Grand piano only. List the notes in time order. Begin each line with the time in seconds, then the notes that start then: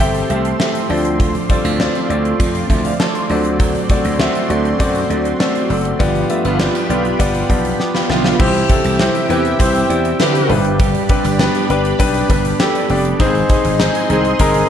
Already playing: A2 G5
0.00 C4 G4 A4 E5
0.30 C4 G4 A4 E5
0.59 C4 G4 A4 E5
0.89 D3 C4 F4 A4 D5
1.49 C4 F4 A4 D5
1.79 C4 F4 A4 D5
2.09 C4 F4 A4 D5
2.70 E5
2.85 F5
3.00 A5
3.15 C6
3.30 D3 C4 F#4 A4 D5
3.90 C4 F#4 A4 D5
4.20 C4 F#4 A4 E5
4.49 C4 F#4 A4 D5
4.79 C4 F#4 A4 D5
5.09 C4 F#4 A4 D5
5.39 C4 F#4 A4 D5
5.69 C4 F#4 A4 D5
5.99 G2 B3 F4 G4 D5
6.29 B3 F4 G4 E5
6.59 B3 F4 G4 D5
6.89 B3 F4 G4 D5
7.19 B3 F4 G4 D5
7.49 B3 F4 G4 D5 A5
7.80 G5 D6
7.95 F5 B5
8.10 E5 G5
8.25 F5
8.39 C3 E4 G4 C5
8.69 E4 G4 A4
8.99 E4 G4 C5
9.29 E4 G4 B4
9.59 E4 G4 C5
9.89 D5
10.20 E5
10.35 C5
10.49 G2 D4 G4 B4
11.09 D4 G4 B4
11.39 D4 G4 B4
11.69 D4 G4 B4
11.99 D4 G4 B4
12.29 D4 G4 B4
12.59 D4 G4 A4
12.90 D4 G4 D5
13.19 G#2 D#4 G#4 C5
13.49 D#4 G#4 C5
13.80 D#4 G#4 C5
14.10 D#4 G#4 C5
14.40 D#4 G#4 A#4